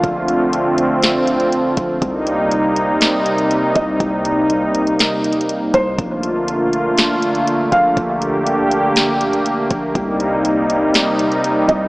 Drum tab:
HH |x-----x-----x-----x-----x-----x--x--x-----x-----|x-----x-----x-----x-----x-----x--x--x-----x-----|x-----x-----x-----x--x--x-----x-x-x-x-----x-----|x-----x-----x-----x-----x-----x--x--x-----x-----|
SD |------------------------o-----------------------|------------------------o-----------------------|------------------------o-----------------------|------------------------o-----------------------|
BD |o-----------------------------------------o-----|o-----------------------------------------o-----|o-----------------------------------------o-----|o-----------------------------------------o-----|

HH |x-----x-----x-----x-----x-----x--x--x-----x-----|x-----x-----x-----x-----x-----x--x--x-----x-----|
SD |------------------------o-----------------------|------------------------o-----------------------|
BD |o-----------------------------------------o-----|o-----------------------------------------o-----|